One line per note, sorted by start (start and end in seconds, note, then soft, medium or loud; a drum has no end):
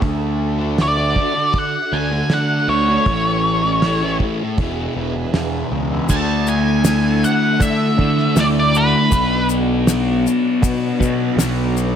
0.00 1.17 D2 medium
0.00 0.78 D3 medium
0.00 0.60 A3 medium
0.00 3.03 D4 medium
0.00 0.57 D4 loud
0.00 3.03 F#4 medium
0.00 4.55 A4 medium
0.00 3.03 E5 medium
0.00 kick medium
0.00 open hi-hat soft
0.59 0.78 A3 medium
0.59 0.79 D4 medium
0.78 1.15 D3 medium
0.78 0.99 A3 medium
0.78 0.97 D4 medium
0.78 1.59 D5 medium
0.78 snare loud
0.78 open hi-hat soft
0.98 1.16 A3 medium
0.98 1.17 D4 medium
1.16 1.73 D3 medium
1.16 1.34 A3 medium
1.16 1.33 D4 medium
1.16 kick medium
1.34 muted distorted electric guitar stroke soft
1.53 kick loud
1.53 open hi-hat soft
1.58 1.96 F#5 medium
1.92 2.21 D2 medium
1.92 2.29 D3 medium
1.92 2.10 A3 medium
1.92 2.10 D4 medium
1.92 2.32 G#5 medium
2.11 muted distorted electric guitar stroke medium
2.30 2.59 D3 medium
2.30 2.67 D3 medium
2.30 2.68 A3 medium
2.30 2.69 D4 loud
2.30 2.67 F#5 loud
2.30 snare loud
2.30 open hi-hat soft
2.68 2.97 D2 medium
2.68 3.04 D3 medium
2.68 2.89 A3 medium
2.68 2.87 D4 medium
2.68 4.16 C#5 medium
2.88 3.05 A3 medium
2.88 3.05 D4 medium
3.06 4.21 A1 medium
3.06 3.83 A2 medium
3.06 3.64 E3 medium
3.06 3.63 A3 medium
3.06 4.56 C#4 medium
3.06 6.06 G#4 medium
3.06 6.06 E5 medium
3.06 kick loud
3.06 open hi-hat soft
3.64 3.83 E3 medium
3.64 3.84 A3 medium
3.82 4.21 A2 medium
3.82 4.03 E3 medium
3.82 4.00 A3 loud
3.82 snare loud
3.82 open hi-hat soft
4.02 4.21 E3 medium
4.02 4.22 A3 medium
4.20 4.57 A2 medium
4.20 4.42 E3 medium
4.20 4.40 A3 medium
4.20 kick medium
4.41 muted distorted electric guitar stroke soft
4.58 4.87 E1 loud
4.58 4.94 E2 medium
4.58 4.96 B2 medium
4.58 4.97 E3 medium
4.58 6.08 D4 medium
4.58 6.08 B4 medium
4.58 kick loud
4.58 open hi-hat soft
4.95 5.25 E1 medium
4.95 5.32 E2 medium
4.95 5.15 B2 medium
4.95 5.14 E3 medium
5.15 muted distorted electric guitar stroke medium
5.33 5.71 E2 medium
5.33 5.63 E2 medium
5.33 5.71 B2 medium
5.33 5.73 E3 medium
5.33 snare loud
5.33 open hi-hat medium
5.72 6.00 C#2 medium
5.72 6.07 E2 medium
5.72 5.92 B2 medium
5.72 5.90 E3 medium
5.91 6.08 B2 medium
5.91 6.07 E3 medium
6.09 7.23 D2 medium
6.09 7.96 D3 medium
6.09 7.96 A3 loud
6.09 11.96 D4 medium
6.09 7.97 D4 loud
6.09 9.08 E4 medium
6.09 9.09 A4 medium
6.09 9.08 E5 medium
6.09 6.49 A5 loud
6.09 kick medium
6.09 crash loud
6.09 maracas medium
6.47 7.24 G#5 loud
6.47 maracas medium
6.85 snare loud
6.85 open hi-hat medium
6.85 maracas medium
7.24 7.62 F#5 medium
7.24 maracas medium
7.60 7.89 D3 medium
7.60 8.39 E5 medium
7.60 kick loud
7.60 open hi-hat medium
7.60 maracas loud
7.98 8.27 D3 medium
7.98 8.35 D3 medium
7.98 8.35 A3 medium
7.98 8.34 D4 medium
7.98 kick medium
8.18 snare soft
8.36 8.93 D2 medium
8.36 9.09 D3 medium
8.36 9.10 A3 medium
8.36 9.10 D4 medium
8.36 snare loud
8.36 open hi-hat medium
8.36 maracas loud
8.40 8.45 D5 medium
8.59 8.77 D5 medium
8.75 9.47 B4 medium
8.75 maracas medium
9.11 10.26 B1 medium
9.11 10.98 B2 medium
9.11 10.99 F#3 medium
9.11 11.96 B3 medium
9.11 10.99 B3 loud
9.11 11.96 F#4 medium
9.11 11.96 D5 medium
9.11 kick loud
9.11 open hi-hat soft
9.11 maracas loud
9.49 maracas medium
9.87 snare loud
9.87 open hi-hat soft
9.87 maracas loud
10.27 maracas medium
10.62 10.91 B2 medium
10.62 kick loud
10.62 open hi-hat medium
10.62 maracas loud
10.99 11.29 B2 loud
10.99 11.37 B2 medium
10.99 11.36 F#3 medium
10.99 11.40 B3 medium
10.99 kick medium
10.99 maracas medium
11.37 11.95 B1 medium
11.37 11.96 B2 medium
11.37 11.96 F#3 medium
11.37 11.96 B3 medium
11.37 snare loud
11.37 open hi-hat medium
11.37 maracas loud
11.77 maracas medium